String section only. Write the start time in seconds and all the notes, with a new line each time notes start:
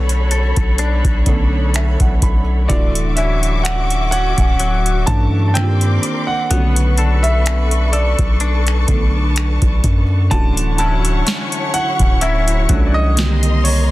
Already playing: A4 C#5 B5
2.69 F#4 E5 C#6 D6
5.55 A#4 D5 C6 D6
6.50 A4 B4 B5 C#6
8.41 A5
10.31 E4 C#5 F#5 C#6
13.17 A#4 D#5 A#5 C6